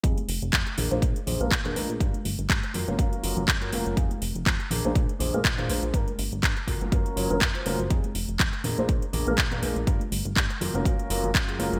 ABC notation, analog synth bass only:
X:1
M:4/4
L:1/16
Q:"Swing 16ths" 1/4=122
K:Bbmix
V:1 name="Analog synth bass" clef=bass
F,, z F,,, F,,, F,, z B,,, B,,, B,, z B,,, B,,, B,,2 B,,, B,,, | G,, z G,,, G,,, G,, z _G,,, G,,, _G,, z G,,, G,,, G,,2 G,,, G,,, | F,, z F,,, F,,, F,, z B,,, B,,, B,, z B,,, B,,, B,,2 B,,, B,,, | G,, z G,,, G,,, G,, z _G,,, G,,, _G,, z G,,, G,,, G,, z G,,, G,,, |
F,, z F,,, F,,, F,, z B,,, B,,, B,, z B,,, B,,, B,,2 B,,, B,,, | G,, z G,,, G,,, G,, z _G,,, G,,, _G,, z G,,, G,,, G,,2 G,,, G,,, |]